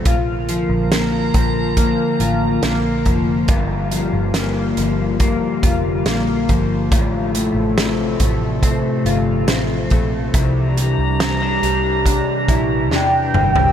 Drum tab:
HH |x-x-x-x-x-x-x-x-|x-x-x-x-x-x-x-x-|x-x-x-x-x-x-x-x-|x-x-x-x-x-x-----|
SD |----o-------o---|----o-------o---|----o-------o---|----o-------o---|
T2 |----------------|----------------|----------------|--------------o-|
FT |----------------|----------------|----------------|---------------o|
BD |o-----o-o-----o-|o-------o-o---o-|o-----o-o-----o-|o-------o-o-----|